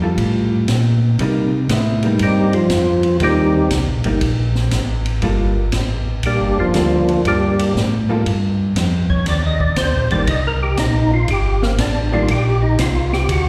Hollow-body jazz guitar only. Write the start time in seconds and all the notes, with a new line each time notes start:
0.02 G3 F4 A4
1.20 G3 A#3 D#4
1.70 G#3 B3 E4
2.04 G3 A#3 D#4
3.21 G3 A#3 D#4
4.05 G3 A#3 D#4
5.23 G3 A#3 F4 A4
6.75 G3 A#3 F4 A4
8.09 G3 A#3 F4 A4
10.12 D#3 G3 A#3 D4
12.12 D#3 G3 A#3 D4